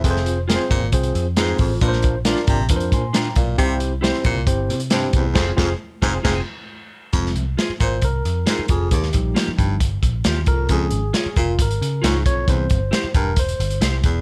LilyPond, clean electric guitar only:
\new Staff \with { instrumentName = "Clean electric guitar" } { \time 4/4 \key f \minor \tempo 4 = 135 r4 <f' aes' c''>8 r4. <f' aes' c''>8 r8 | r4 <d' f' c''>8 r4. <d' f' c''>8 r8 | r4 <e' g' c''>8 r4. <e' g' c''>8 r8 | <f' aes' c''>8 <f' aes' c''>8 r8 <f' aes' c''>8 <f' aes' c''>8 r4. |
r4 <f' aes' c''>8 r4. <f' aes' c''>8 r8 | r4 <bes f' g'>8 r4. <bes f' g'>8 r8 | r4 <f' aes' des''>8 r4. <f' aes' des''>8 r8 | r4 <e' g' c''>8 r4. <e' g' c''>8 r8 | }